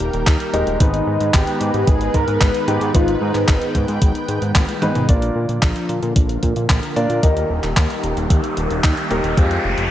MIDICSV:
0, 0, Header, 1, 7, 480
1, 0, Start_track
1, 0, Key_signature, -3, "major"
1, 0, Tempo, 535714
1, 720, Time_signature, 4, 2, 24, 8
1, 8878, End_track
2, 0, Start_track
2, 0, Title_t, "Analog synth lead"
2, 0, Program_c, 0, 81
2, 0, Note_on_c, 0, 70, 110
2, 206, Note_off_c, 0, 70, 0
2, 724, Note_on_c, 0, 63, 93
2, 1204, Note_on_c, 0, 67, 98
2, 1217, Note_off_c, 0, 63, 0
2, 1682, Note_on_c, 0, 68, 107
2, 1696, Note_off_c, 0, 67, 0
2, 1922, Note_on_c, 0, 70, 108
2, 1935, Note_off_c, 0, 68, 0
2, 2161, Note_on_c, 0, 71, 110
2, 2175, Note_off_c, 0, 70, 0
2, 2394, Note_off_c, 0, 71, 0
2, 2400, Note_on_c, 0, 67, 102
2, 2640, Note_on_c, 0, 65, 105
2, 2653, Note_off_c, 0, 67, 0
2, 2874, Note_off_c, 0, 65, 0
2, 2880, Note_on_c, 0, 63, 86
2, 3326, Note_off_c, 0, 63, 0
2, 8878, End_track
3, 0, Start_track
3, 0, Title_t, "Grand piano"
3, 0, Program_c, 1, 0
3, 480, Note_on_c, 1, 56, 98
3, 480, Note_on_c, 1, 63, 88
3, 480, Note_on_c, 1, 67, 88
3, 480, Note_on_c, 1, 70, 88
3, 480, Note_on_c, 1, 75, 106
3, 691, Note_off_c, 1, 56, 0
3, 691, Note_off_c, 1, 63, 0
3, 691, Note_off_c, 1, 67, 0
3, 691, Note_off_c, 1, 70, 0
3, 691, Note_off_c, 1, 75, 0
3, 720, Note_on_c, 1, 44, 76
3, 720, Note_on_c, 1, 56, 74
3, 720, Note_on_c, 1, 59, 76
3, 720, Note_on_c, 1, 63, 70
3, 720, Note_on_c, 1, 71, 89
3, 1891, Note_off_c, 1, 56, 0
3, 1891, Note_off_c, 1, 63, 0
3, 1892, Note_off_c, 1, 44, 0
3, 1892, Note_off_c, 1, 59, 0
3, 1892, Note_off_c, 1, 71, 0
3, 2399, Note_on_c, 1, 44, 96
3, 2399, Note_on_c, 1, 59, 90
3, 2399, Note_on_c, 1, 63, 88
3, 2399, Note_on_c, 1, 68, 87
3, 2399, Note_on_c, 1, 71, 106
3, 2611, Note_off_c, 1, 44, 0
3, 2611, Note_off_c, 1, 59, 0
3, 2611, Note_off_c, 1, 63, 0
3, 2611, Note_off_c, 1, 68, 0
3, 2611, Note_off_c, 1, 71, 0
3, 2640, Note_on_c, 1, 44, 83
3, 2640, Note_on_c, 1, 59, 77
3, 2640, Note_on_c, 1, 63, 75
3, 2640, Note_on_c, 1, 68, 70
3, 2640, Note_on_c, 1, 71, 91
3, 3811, Note_off_c, 1, 44, 0
3, 3811, Note_off_c, 1, 59, 0
3, 3811, Note_off_c, 1, 63, 0
3, 3811, Note_off_c, 1, 68, 0
3, 3811, Note_off_c, 1, 71, 0
3, 4319, Note_on_c, 1, 59, 96
3, 4319, Note_on_c, 1, 63, 90
3, 4319, Note_on_c, 1, 68, 91
3, 4319, Note_on_c, 1, 71, 113
3, 4531, Note_off_c, 1, 59, 0
3, 4531, Note_off_c, 1, 63, 0
3, 4531, Note_off_c, 1, 68, 0
3, 4531, Note_off_c, 1, 71, 0
3, 4559, Note_on_c, 1, 46, 83
3, 4559, Note_on_c, 1, 62, 72
3, 4559, Note_on_c, 1, 65, 69
3, 4559, Note_on_c, 1, 70, 72
3, 4559, Note_on_c, 1, 74, 87
3, 5731, Note_off_c, 1, 46, 0
3, 5731, Note_off_c, 1, 62, 0
3, 5731, Note_off_c, 1, 65, 0
3, 5731, Note_off_c, 1, 70, 0
3, 5731, Note_off_c, 1, 74, 0
3, 6239, Note_on_c, 1, 62, 94
3, 6239, Note_on_c, 1, 65, 86
3, 6239, Note_on_c, 1, 70, 84
3, 6239, Note_on_c, 1, 74, 107
3, 6451, Note_off_c, 1, 62, 0
3, 6451, Note_off_c, 1, 65, 0
3, 6451, Note_off_c, 1, 70, 0
3, 6451, Note_off_c, 1, 74, 0
3, 6479, Note_on_c, 1, 51, 82
3, 6479, Note_on_c, 1, 67, 70
3, 6479, Note_on_c, 1, 70, 74
3, 6479, Note_on_c, 1, 75, 89
3, 6480, Note_on_c, 1, 63, 73
3, 7651, Note_off_c, 1, 51, 0
3, 7651, Note_off_c, 1, 63, 0
3, 7651, Note_off_c, 1, 67, 0
3, 7651, Note_off_c, 1, 70, 0
3, 7651, Note_off_c, 1, 75, 0
3, 8159, Note_on_c, 1, 63, 98
3, 8159, Note_on_c, 1, 67, 87
3, 8159, Note_on_c, 1, 70, 87
3, 8160, Note_on_c, 1, 75, 109
3, 8371, Note_off_c, 1, 63, 0
3, 8371, Note_off_c, 1, 67, 0
3, 8371, Note_off_c, 1, 70, 0
3, 8371, Note_off_c, 1, 75, 0
3, 8399, Note_on_c, 1, 56, 80
3, 8399, Note_on_c, 1, 60, 73
3, 8399, Note_on_c, 1, 65, 78
3, 8399, Note_on_c, 1, 67, 93
3, 8878, Note_off_c, 1, 56, 0
3, 8878, Note_off_c, 1, 60, 0
3, 8878, Note_off_c, 1, 65, 0
3, 8878, Note_off_c, 1, 67, 0
3, 8878, End_track
4, 0, Start_track
4, 0, Title_t, "Analog synth pad"
4, 0, Program_c, 2, 89
4, 0, Note_on_c, 2, 51, 77
4, 0, Note_on_c, 2, 55, 74
4, 0, Note_on_c, 2, 58, 69
4, 0, Note_on_c, 2, 70, 84
4, 0, Note_on_c, 2, 79, 73
4, 684, Note_off_c, 2, 51, 0
4, 684, Note_off_c, 2, 55, 0
4, 684, Note_off_c, 2, 58, 0
4, 684, Note_off_c, 2, 79, 0
4, 685, Note_off_c, 2, 70, 0
4, 720, Note_on_c, 2, 51, 81
4, 720, Note_on_c, 2, 56, 72
4, 720, Note_on_c, 2, 71, 88
4, 721, Note_on_c, 2, 59, 74
4, 721, Note_on_c, 2, 63, 71
4, 2622, Note_off_c, 2, 63, 0
4, 2640, Note_on_c, 2, 79, 72
4, 4524, Note_off_c, 2, 56, 0
4, 4524, Note_off_c, 2, 71, 0
4, 4525, Note_off_c, 2, 51, 0
4, 4525, Note_off_c, 2, 59, 0
4, 4541, Note_off_c, 2, 79, 0
4, 4559, Note_on_c, 2, 50, 79
4, 4559, Note_on_c, 2, 53, 74
4, 4559, Note_on_c, 2, 65, 71
4, 4560, Note_on_c, 2, 58, 73
4, 4560, Note_on_c, 2, 70, 83
4, 6460, Note_off_c, 2, 50, 0
4, 6461, Note_off_c, 2, 53, 0
4, 6461, Note_off_c, 2, 65, 0
4, 6477, Note_on_c, 2, 55, 72
4, 6478, Note_on_c, 2, 51, 81
4, 6478, Note_on_c, 2, 67, 70
4, 8364, Note_off_c, 2, 58, 0
4, 8364, Note_off_c, 2, 70, 0
4, 8380, Note_off_c, 2, 51, 0
4, 8380, Note_off_c, 2, 55, 0
4, 8401, Note_on_c, 2, 53, 79
4, 8401, Note_on_c, 2, 56, 69
4, 8401, Note_on_c, 2, 60, 69
4, 8878, Note_off_c, 2, 53, 0
4, 8878, Note_off_c, 2, 56, 0
4, 8878, Note_off_c, 2, 60, 0
4, 8878, Note_off_c, 2, 67, 0
4, 8878, End_track
5, 0, Start_track
5, 0, Title_t, "Analog synth bass"
5, 0, Program_c, 3, 38
5, 1, Note_on_c, 3, 27, 78
5, 97, Note_off_c, 3, 27, 0
5, 121, Note_on_c, 3, 27, 94
5, 217, Note_off_c, 3, 27, 0
5, 240, Note_on_c, 3, 39, 87
5, 337, Note_off_c, 3, 39, 0
5, 481, Note_on_c, 3, 27, 92
5, 577, Note_off_c, 3, 27, 0
5, 601, Note_on_c, 3, 27, 79
5, 697, Note_off_c, 3, 27, 0
5, 720, Note_on_c, 3, 32, 101
5, 914, Note_off_c, 3, 32, 0
5, 961, Note_on_c, 3, 44, 82
5, 1057, Note_off_c, 3, 44, 0
5, 1081, Note_on_c, 3, 44, 81
5, 1177, Note_off_c, 3, 44, 0
5, 1200, Note_on_c, 3, 32, 99
5, 1297, Note_off_c, 3, 32, 0
5, 1440, Note_on_c, 3, 44, 97
5, 1537, Note_off_c, 3, 44, 0
5, 1561, Note_on_c, 3, 44, 95
5, 1657, Note_off_c, 3, 44, 0
5, 1680, Note_on_c, 3, 32, 89
5, 1874, Note_off_c, 3, 32, 0
5, 1921, Note_on_c, 3, 44, 83
5, 2017, Note_off_c, 3, 44, 0
5, 2041, Note_on_c, 3, 44, 83
5, 2137, Note_off_c, 3, 44, 0
5, 2161, Note_on_c, 3, 32, 90
5, 2257, Note_off_c, 3, 32, 0
5, 2400, Note_on_c, 3, 44, 91
5, 2497, Note_off_c, 3, 44, 0
5, 2520, Note_on_c, 3, 44, 88
5, 2617, Note_off_c, 3, 44, 0
5, 2641, Note_on_c, 3, 32, 103
5, 2834, Note_off_c, 3, 32, 0
5, 2881, Note_on_c, 3, 44, 90
5, 2977, Note_off_c, 3, 44, 0
5, 3000, Note_on_c, 3, 44, 79
5, 3097, Note_off_c, 3, 44, 0
5, 3120, Note_on_c, 3, 32, 93
5, 3217, Note_off_c, 3, 32, 0
5, 3360, Note_on_c, 3, 44, 92
5, 3457, Note_off_c, 3, 44, 0
5, 3480, Note_on_c, 3, 44, 96
5, 3577, Note_off_c, 3, 44, 0
5, 3600, Note_on_c, 3, 32, 91
5, 3697, Note_off_c, 3, 32, 0
5, 3840, Note_on_c, 3, 44, 80
5, 3937, Note_off_c, 3, 44, 0
5, 3960, Note_on_c, 3, 44, 87
5, 4057, Note_off_c, 3, 44, 0
5, 4080, Note_on_c, 3, 32, 99
5, 4177, Note_off_c, 3, 32, 0
5, 4320, Note_on_c, 3, 44, 94
5, 4417, Note_off_c, 3, 44, 0
5, 4440, Note_on_c, 3, 44, 83
5, 4537, Note_off_c, 3, 44, 0
5, 4560, Note_on_c, 3, 34, 101
5, 4754, Note_off_c, 3, 34, 0
5, 4799, Note_on_c, 3, 46, 86
5, 4896, Note_off_c, 3, 46, 0
5, 4920, Note_on_c, 3, 46, 78
5, 5017, Note_off_c, 3, 46, 0
5, 5039, Note_on_c, 3, 34, 97
5, 5137, Note_off_c, 3, 34, 0
5, 5280, Note_on_c, 3, 46, 91
5, 5377, Note_off_c, 3, 46, 0
5, 5400, Note_on_c, 3, 46, 99
5, 5497, Note_off_c, 3, 46, 0
5, 5520, Note_on_c, 3, 34, 89
5, 5714, Note_off_c, 3, 34, 0
5, 5760, Note_on_c, 3, 46, 85
5, 5857, Note_off_c, 3, 46, 0
5, 5881, Note_on_c, 3, 46, 81
5, 5977, Note_off_c, 3, 46, 0
5, 6000, Note_on_c, 3, 34, 89
5, 6097, Note_off_c, 3, 34, 0
5, 6241, Note_on_c, 3, 46, 94
5, 6337, Note_off_c, 3, 46, 0
5, 6360, Note_on_c, 3, 46, 85
5, 6457, Note_off_c, 3, 46, 0
5, 6480, Note_on_c, 3, 39, 99
5, 6674, Note_off_c, 3, 39, 0
5, 6720, Note_on_c, 3, 27, 84
5, 6817, Note_off_c, 3, 27, 0
5, 6840, Note_on_c, 3, 27, 79
5, 6937, Note_off_c, 3, 27, 0
5, 6960, Note_on_c, 3, 39, 97
5, 7057, Note_off_c, 3, 39, 0
5, 7199, Note_on_c, 3, 27, 93
5, 7297, Note_off_c, 3, 27, 0
5, 7320, Note_on_c, 3, 27, 96
5, 7417, Note_off_c, 3, 27, 0
5, 7440, Note_on_c, 3, 39, 83
5, 7537, Note_off_c, 3, 39, 0
5, 7680, Note_on_c, 3, 27, 79
5, 7777, Note_off_c, 3, 27, 0
5, 7800, Note_on_c, 3, 27, 97
5, 7897, Note_off_c, 3, 27, 0
5, 7920, Note_on_c, 3, 39, 87
5, 8017, Note_off_c, 3, 39, 0
5, 8160, Note_on_c, 3, 27, 93
5, 8257, Note_off_c, 3, 27, 0
5, 8281, Note_on_c, 3, 27, 84
5, 8377, Note_off_c, 3, 27, 0
5, 8400, Note_on_c, 3, 41, 96
5, 8594, Note_off_c, 3, 41, 0
5, 8640, Note_on_c, 3, 29, 83
5, 8737, Note_off_c, 3, 29, 0
5, 8761, Note_on_c, 3, 29, 80
5, 8857, Note_off_c, 3, 29, 0
5, 8878, End_track
6, 0, Start_track
6, 0, Title_t, "Riser"
6, 0, Program_c, 4, 103
6, 4560, Note_on_c, 4, 60, 79
6, 8878, Note_off_c, 4, 60, 0
6, 8878, End_track
7, 0, Start_track
7, 0, Title_t, "Drums"
7, 0, Note_on_c, 9, 42, 59
7, 90, Note_off_c, 9, 42, 0
7, 121, Note_on_c, 9, 42, 38
7, 210, Note_off_c, 9, 42, 0
7, 240, Note_on_c, 9, 36, 110
7, 240, Note_on_c, 9, 39, 111
7, 240, Note_on_c, 9, 42, 93
7, 330, Note_off_c, 9, 36, 0
7, 330, Note_off_c, 9, 39, 0
7, 330, Note_off_c, 9, 42, 0
7, 360, Note_on_c, 9, 42, 38
7, 450, Note_off_c, 9, 42, 0
7, 480, Note_on_c, 9, 42, 67
7, 570, Note_off_c, 9, 42, 0
7, 600, Note_on_c, 9, 42, 36
7, 690, Note_off_c, 9, 42, 0
7, 720, Note_on_c, 9, 42, 96
7, 721, Note_on_c, 9, 36, 115
7, 809, Note_off_c, 9, 42, 0
7, 810, Note_off_c, 9, 36, 0
7, 840, Note_on_c, 9, 42, 39
7, 930, Note_off_c, 9, 42, 0
7, 1080, Note_on_c, 9, 42, 43
7, 1170, Note_off_c, 9, 42, 0
7, 1199, Note_on_c, 9, 39, 109
7, 1199, Note_on_c, 9, 42, 93
7, 1200, Note_on_c, 9, 36, 115
7, 1289, Note_off_c, 9, 39, 0
7, 1289, Note_off_c, 9, 42, 0
7, 1290, Note_off_c, 9, 36, 0
7, 1319, Note_on_c, 9, 42, 36
7, 1409, Note_off_c, 9, 42, 0
7, 1440, Note_on_c, 9, 42, 63
7, 1529, Note_off_c, 9, 42, 0
7, 1559, Note_on_c, 9, 42, 40
7, 1649, Note_off_c, 9, 42, 0
7, 1679, Note_on_c, 9, 42, 95
7, 1680, Note_on_c, 9, 36, 110
7, 1769, Note_off_c, 9, 42, 0
7, 1770, Note_off_c, 9, 36, 0
7, 1799, Note_on_c, 9, 42, 39
7, 1889, Note_off_c, 9, 42, 0
7, 1919, Note_on_c, 9, 42, 66
7, 1920, Note_on_c, 9, 36, 59
7, 2009, Note_off_c, 9, 42, 0
7, 2010, Note_off_c, 9, 36, 0
7, 2040, Note_on_c, 9, 42, 38
7, 2129, Note_off_c, 9, 42, 0
7, 2160, Note_on_c, 9, 39, 113
7, 2160, Note_on_c, 9, 42, 96
7, 2161, Note_on_c, 9, 36, 104
7, 2249, Note_off_c, 9, 39, 0
7, 2249, Note_off_c, 9, 42, 0
7, 2250, Note_off_c, 9, 36, 0
7, 2280, Note_on_c, 9, 42, 43
7, 2369, Note_off_c, 9, 42, 0
7, 2400, Note_on_c, 9, 42, 68
7, 2490, Note_off_c, 9, 42, 0
7, 2520, Note_on_c, 9, 42, 40
7, 2609, Note_off_c, 9, 42, 0
7, 2639, Note_on_c, 9, 42, 92
7, 2641, Note_on_c, 9, 36, 110
7, 2729, Note_off_c, 9, 42, 0
7, 2730, Note_off_c, 9, 36, 0
7, 2759, Note_on_c, 9, 42, 40
7, 2849, Note_off_c, 9, 42, 0
7, 3000, Note_on_c, 9, 39, 36
7, 3000, Note_on_c, 9, 42, 44
7, 3089, Note_off_c, 9, 39, 0
7, 3089, Note_off_c, 9, 42, 0
7, 3119, Note_on_c, 9, 39, 111
7, 3119, Note_on_c, 9, 42, 98
7, 3120, Note_on_c, 9, 36, 113
7, 3209, Note_off_c, 9, 39, 0
7, 3209, Note_off_c, 9, 42, 0
7, 3210, Note_off_c, 9, 36, 0
7, 3239, Note_on_c, 9, 42, 41
7, 3329, Note_off_c, 9, 42, 0
7, 3359, Note_on_c, 9, 42, 68
7, 3360, Note_on_c, 9, 36, 58
7, 3449, Note_off_c, 9, 42, 0
7, 3450, Note_off_c, 9, 36, 0
7, 3479, Note_on_c, 9, 42, 43
7, 3569, Note_off_c, 9, 42, 0
7, 3599, Note_on_c, 9, 42, 95
7, 3600, Note_on_c, 9, 36, 108
7, 3689, Note_off_c, 9, 42, 0
7, 3690, Note_off_c, 9, 36, 0
7, 3719, Note_on_c, 9, 42, 39
7, 3809, Note_off_c, 9, 42, 0
7, 3839, Note_on_c, 9, 42, 64
7, 3929, Note_off_c, 9, 42, 0
7, 3960, Note_on_c, 9, 42, 40
7, 4049, Note_off_c, 9, 42, 0
7, 4079, Note_on_c, 9, 39, 114
7, 4079, Note_on_c, 9, 42, 96
7, 4079, Note_on_c, 9, 48, 66
7, 4080, Note_on_c, 9, 36, 109
7, 4169, Note_off_c, 9, 36, 0
7, 4169, Note_off_c, 9, 39, 0
7, 4169, Note_off_c, 9, 42, 0
7, 4169, Note_off_c, 9, 48, 0
7, 4199, Note_on_c, 9, 42, 41
7, 4199, Note_on_c, 9, 48, 65
7, 4289, Note_off_c, 9, 42, 0
7, 4289, Note_off_c, 9, 48, 0
7, 4318, Note_on_c, 9, 42, 68
7, 4318, Note_on_c, 9, 47, 84
7, 4408, Note_off_c, 9, 42, 0
7, 4408, Note_off_c, 9, 47, 0
7, 4438, Note_on_c, 9, 42, 37
7, 4438, Note_on_c, 9, 45, 80
7, 4528, Note_off_c, 9, 42, 0
7, 4528, Note_off_c, 9, 45, 0
7, 4558, Note_on_c, 9, 42, 89
7, 4560, Note_on_c, 9, 36, 115
7, 4648, Note_off_c, 9, 42, 0
7, 4649, Note_off_c, 9, 36, 0
7, 4678, Note_on_c, 9, 42, 41
7, 4768, Note_off_c, 9, 42, 0
7, 4918, Note_on_c, 9, 42, 39
7, 5008, Note_off_c, 9, 42, 0
7, 5039, Note_on_c, 9, 39, 117
7, 5039, Note_on_c, 9, 42, 95
7, 5040, Note_on_c, 9, 36, 116
7, 5128, Note_off_c, 9, 39, 0
7, 5128, Note_off_c, 9, 42, 0
7, 5129, Note_off_c, 9, 36, 0
7, 5158, Note_on_c, 9, 42, 41
7, 5248, Note_off_c, 9, 42, 0
7, 5279, Note_on_c, 9, 42, 66
7, 5368, Note_off_c, 9, 42, 0
7, 5399, Note_on_c, 9, 42, 44
7, 5489, Note_off_c, 9, 42, 0
7, 5519, Note_on_c, 9, 42, 101
7, 5520, Note_on_c, 9, 36, 113
7, 5608, Note_off_c, 9, 42, 0
7, 5609, Note_off_c, 9, 36, 0
7, 5638, Note_on_c, 9, 42, 40
7, 5728, Note_off_c, 9, 42, 0
7, 5758, Note_on_c, 9, 42, 65
7, 5760, Note_on_c, 9, 36, 59
7, 5848, Note_off_c, 9, 42, 0
7, 5849, Note_off_c, 9, 36, 0
7, 5879, Note_on_c, 9, 42, 41
7, 5968, Note_off_c, 9, 42, 0
7, 5999, Note_on_c, 9, 39, 118
7, 5999, Note_on_c, 9, 42, 103
7, 6000, Note_on_c, 9, 36, 110
7, 6088, Note_off_c, 9, 39, 0
7, 6088, Note_off_c, 9, 42, 0
7, 6089, Note_off_c, 9, 36, 0
7, 6119, Note_on_c, 9, 42, 41
7, 6209, Note_off_c, 9, 42, 0
7, 6239, Note_on_c, 9, 42, 70
7, 6329, Note_off_c, 9, 42, 0
7, 6359, Note_on_c, 9, 42, 39
7, 6449, Note_off_c, 9, 42, 0
7, 6480, Note_on_c, 9, 36, 115
7, 6480, Note_on_c, 9, 42, 87
7, 6569, Note_off_c, 9, 36, 0
7, 6569, Note_off_c, 9, 42, 0
7, 6600, Note_on_c, 9, 42, 38
7, 6690, Note_off_c, 9, 42, 0
7, 6840, Note_on_c, 9, 39, 40
7, 6840, Note_on_c, 9, 42, 41
7, 6929, Note_off_c, 9, 39, 0
7, 6929, Note_off_c, 9, 42, 0
7, 6960, Note_on_c, 9, 36, 121
7, 6960, Note_on_c, 9, 39, 120
7, 6960, Note_on_c, 9, 42, 92
7, 7049, Note_off_c, 9, 36, 0
7, 7049, Note_off_c, 9, 39, 0
7, 7049, Note_off_c, 9, 42, 0
7, 7080, Note_on_c, 9, 42, 39
7, 7170, Note_off_c, 9, 42, 0
7, 7199, Note_on_c, 9, 42, 61
7, 7289, Note_off_c, 9, 42, 0
7, 7320, Note_on_c, 9, 42, 40
7, 7409, Note_off_c, 9, 42, 0
7, 7439, Note_on_c, 9, 42, 96
7, 7440, Note_on_c, 9, 36, 120
7, 7529, Note_off_c, 9, 36, 0
7, 7529, Note_off_c, 9, 42, 0
7, 7560, Note_on_c, 9, 42, 39
7, 7649, Note_off_c, 9, 42, 0
7, 7679, Note_on_c, 9, 42, 61
7, 7769, Note_off_c, 9, 42, 0
7, 7799, Note_on_c, 9, 42, 37
7, 7889, Note_off_c, 9, 42, 0
7, 7919, Note_on_c, 9, 39, 127
7, 7919, Note_on_c, 9, 42, 95
7, 7920, Note_on_c, 9, 36, 118
7, 8008, Note_off_c, 9, 39, 0
7, 8008, Note_off_c, 9, 42, 0
7, 8009, Note_off_c, 9, 36, 0
7, 8039, Note_on_c, 9, 42, 38
7, 8129, Note_off_c, 9, 42, 0
7, 8159, Note_on_c, 9, 42, 68
7, 8248, Note_off_c, 9, 42, 0
7, 8279, Note_on_c, 9, 42, 37
7, 8369, Note_off_c, 9, 42, 0
7, 8399, Note_on_c, 9, 42, 90
7, 8400, Note_on_c, 9, 36, 123
7, 8489, Note_off_c, 9, 36, 0
7, 8489, Note_off_c, 9, 42, 0
7, 8520, Note_on_c, 9, 42, 37
7, 8609, Note_off_c, 9, 42, 0
7, 8759, Note_on_c, 9, 42, 40
7, 8849, Note_off_c, 9, 42, 0
7, 8878, End_track
0, 0, End_of_file